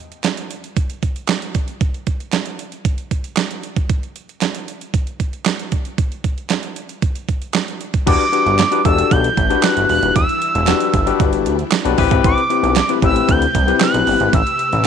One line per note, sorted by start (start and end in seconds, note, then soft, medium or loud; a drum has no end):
0.12 closed hi-hat soft
0.24 snare loud
0.24 clap medium
0.24 closed hi-hat loud
0.37 closed hi-hat medium
0.51 closed hi-hat medium
0.64 closed hi-hat medium
0.77 kick loud
0.77 closed hi-hat medium
0.90 closed hi-hat soft
1.03 kick medium
1.03 closed hi-hat medium
1.16 closed hi-hat soft
1.28 snare loud
1.28 clap medium
1.28 closed hi-hat medium
1.42 closed hi-hat medium
1.55 kick medium
1.55 closed hi-hat medium
1.68 closed hi-hat medium
1.81 kick loud
1.81 closed hi-hat medium
1.94 closed hi-hat soft
2.07 kick medium
2.07 closed hi-hat medium
2.20 closed hi-hat soft
2.33 snare loud
2.33 clap medium
2.33 closed hi-hat medium
2.46 closed hi-hat medium
2.59 closed hi-hat medium
2.72 closed hi-hat medium
2.85 kick loud
2.85 closed hi-hat medium
2.98 closed hi-hat medium
3.11 kick medium
3.11 closed hi-hat medium
3.24 closed hi-hat soft
3.37 snare loud
3.37 clap medium
3.37 closed hi-hat medium
3.51 closed hi-hat medium
3.63 closed hi-hat medium
3.76 kick medium
3.76 closed hi-hat medium
3.89 kick loud
3.89 closed hi-hat medium
4.03 closed hi-hat soft
4.16 closed hi-hat medium
4.29 closed hi-hat soft
4.41 snare loud
4.41 clap medium
4.41 closed hi-hat medium
4.55 closed hi-hat medium
4.68 closed hi-hat medium
4.81 closed hi-hat medium
4.94 kick loud
4.94 closed hi-hat medium
5.07 closed hi-hat medium
5.20 kick medium
5.20 closed hi-hat medium
5.33 closed hi-hat soft
5.46 snare loud
5.46 clap medium
5.46 closed hi-hat medium
5.59 closed hi-hat medium
5.72 kick medium
5.72 closed hi-hat medium
5.85 closed hi-hat medium
5.98 kick loud
5.98 closed hi-hat medium
6.12 closed hi-hat soft
6.24 kick medium
6.24 closed hi-hat medium
6.38 closed hi-hat soft
6.50 snare loud
6.50 clap medium
6.50 closed hi-hat medium
6.63 closed hi-hat medium
6.76 closed hi-hat medium
6.89 closed hi-hat medium
7.02 kick loud
7.02 closed hi-hat medium
7.15 closed hi-hat medium
7.29 kick medium
7.29 closed hi-hat medium
7.42 closed hi-hat soft
7.54 snare loud
7.54 clap medium
7.54 closed hi-hat medium
7.68 closed hi-hat medium
7.81 closed hi-hat medium
7.94 kick medium
7.94 closed hi-hat soft
8.06 8.16 E1 medium
8.06 11.94 E3 medium
8.06 11.94 G3 medium
8.06 8.23 D4 medium
8.06 11.94 D4 medium
8.06 11.94 E4 medium
8.06 8.23 F#4 medium
8.06 8.23 G4 medium
8.06 8.24 B4 medium
8.06 8.81 D6 loud
8.06 kick loud
8.06 closed hi-hat loud
8.06 crash loud
8.21 closed hi-hat soft
8.32 8.57 D4 medium
8.32 8.58 F#4 medium
8.32 8.58 G4 medium
8.32 8.58 B4 medium
8.32 closed hi-hat medium
8.46 8.64 G1 medium
8.46 closed hi-hat soft
8.59 snare loud
8.59 clap medium
8.59 closed hi-hat medium
8.72 8.80 D4 medium
8.72 8.80 F#4 medium
8.72 8.80 G4 medium
8.72 8.81 B4 loud
8.72 closed hi-hat medium
8.85 9.03 E1 loud
8.85 9.26 D4 medium
8.85 9.27 F#4 medium
8.85 9.27 G4 medium
8.85 9.27 A4 medium
8.85 9.13 E6 loud
8.85 kick loud
8.85 closed hi-hat medium
8.98 closed hi-hat medium
9.11 9.29 B1 medium
9.11 9.65 G6 loud
9.11 kick loud
9.11 closed hi-hat medium
9.24 closed hi-hat medium
9.37 9.55 A1 medium
9.37 kick medium
9.37 closed hi-hat medium
9.50 10.16 D4 medium
9.50 10.16 F#4 medium
9.50 10.16 G4 medium
9.50 10.17 B4 medium
9.50 closed hi-hat medium
9.63 9.89 F#6 medium
9.63 snare loud
9.63 clap loud
9.63 closed hi-hat medium
9.77 9.86 G1 loud
9.77 closed hi-hat medium
9.89 9.99 E1 medium
9.89 10.14 F#6 medium
9.89 open hi-hat medium
10.03 10.12 D#1 medium
10.03 closed hi-hat medium
10.16 10.25 E1 medium
10.16 11.16 E6 loud
10.16 kick loud
10.16 closed hi-hat medium
10.29 closed hi-hat soft
10.42 closed hi-hat medium
10.55 10.73 E1 loud
10.55 closed hi-hat soft
10.67 10.92 D4 medium
10.67 10.92 F#4 medium
10.67 10.93 G4 medium
10.67 10.93 B4 medium
10.67 snare loud
10.67 clap loud
10.67 closed hi-hat loud
10.80 closed hi-hat medium
10.94 11.12 G1 loud
10.94 kick medium
10.94 closed hi-hat medium
11.06 11.56 D4 medium
11.06 11.56 F#4 medium
11.06 11.57 G4 medium
11.06 11.57 B4 medium
11.06 closed hi-hat medium
11.20 11.48 G1 medium
11.20 kick loud
11.20 closed hi-hat medium
11.33 closed hi-hat medium
11.46 11.64 D2 loud
11.46 closed hi-hat medium
11.59 closed hi-hat soft
11.72 snare loud
11.72 clap loud
11.72 closed hi-hat loud
11.85 11.94 B1 medium
11.85 11.98 D4 loud
11.85 11.98 F#4 medium
11.85 11.97 G4 medium
11.85 11.97 B4 loud
11.85 closed hi-hat medium
11.98 12.07 A1 loud
11.98 14.87 C3 medium
11.98 14.87 A3 medium
11.98 12.40 C4 loud
11.98 12.40 E4 medium
11.98 12.40 G4 medium
11.98 14.87 G4 medium
11.98 12.40 B4 loud
11.98 14.87 B4 medium
11.98 kick loud
11.98 open hi-hat medium
12.11 12.20 G#1 medium
12.11 kick loud
12.11 closed hi-hat medium
12.24 12.33 A1 loud
12.24 12.73 D6 loud
12.24 kick loud
12.24 closed hi-hat loud
12.38 closed hi-hat soft
12.50 12.75 C4 medium
12.50 12.75 E4 medium
12.50 12.75 G4 medium
12.50 12.75 B4 medium
12.50 closed hi-hat medium
12.63 12.81 B1 loud
12.63 closed hi-hat soft
12.76 12.90 D6 medium
12.76 snare loud
12.76 clap medium
12.76 closed hi-hat loud
12.89 12.98 C4 medium
12.89 12.98 E4 medium
12.89 12.98 G4 medium
12.89 12.98 B4 medium
12.89 closed hi-hat medium
13.02 13.21 A1 loud
13.02 13.44 C4 medium
13.02 13.44 E4 medium
13.02 13.44 G4 medium
13.02 13.44 B4 medium
13.02 13.32 E6 loud
13.02 kick loud
13.02 closed hi-hat medium
13.16 closed hi-hat medium
13.29 13.47 D2 loud
13.29 13.82 G6 loud
13.29 kick loud
13.29 closed hi-hat medium
13.42 closed hi-hat medium
13.55 13.73 C2 loud
13.55 kick medium
13.55 closed hi-hat medium
13.67 14.34 C4 medium
13.67 14.34 E4 medium
13.67 14.34 G4 medium
13.67 14.34 B4 medium
13.67 closed hi-hat medium
13.80 14.31 F#6 medium
13.80 snare loud
13.80 clap loud
13.80 closed hi-hat loud
13.94 14.03 B1 loud
13.94 closed hi-hat medium
14.07 14.16 G1 loud
14.07 open hi-hat medium
14.20 14.29 G#1 loud
14.20 closed hi-hat medium
14.33 14.42 A1 loud
14.33 14.87 E6 loud
14.33 kick loud
14.33 closed hi-hat loud
14.47 closed hi-hat soft
14.59 closed hi-hat medium
14.73 14.87 A1 loud
14.73 closed hi-hat soft